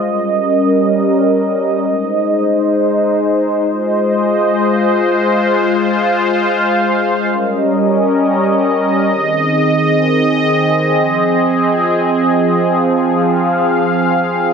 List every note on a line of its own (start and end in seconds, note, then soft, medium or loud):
0.00 1.84 G3 medium
0.00 1.84 C#4 medium
0.00 1.84 A#4 medium
0.00 3.64 D#5 medium
1.86 3.66 G#3 medium
1.86 3.66 D#4 medium
1.86 3.66 C5 medium
3.68 7.28 G#3 medium
3.68 7.28 F4 medium
3.68 7.28 C5 medium
3.68 5.48 D#5 medium
5.50 7.30 F5 medium
7.31 9.11 G3 medium
7.31 9.11 C#4 medium
7.31 9.11 A#4 medium
7.31 12.73 D#5 medium
9.13 10.93 D#3 medium
9.13 14.53 C4 medium
9.13 14.53 G#4 medium
10.95 14.53 F3 medium
12.77 14.53 F5 medium